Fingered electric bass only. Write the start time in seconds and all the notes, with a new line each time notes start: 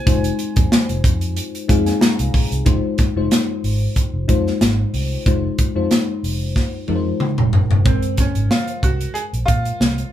0.07 F1
0.57 F2
0.89 F1
1.04 F2
1.69 F2
2.19 C2
2.34 A#1
2.51 C2
3.16 F1
3.64 G#1
4.13 F1
4.29 F2
4.61 G#1
4.93 C2
5.26 F1
5.76 F2
6.23 F1
6.89 F2
7.38 F1
7.53 F#1
7.70 F1
7.86 A#1
8.36 G#1
8.83 C2
9.33 A#1
9.48 A#2
9.80 C2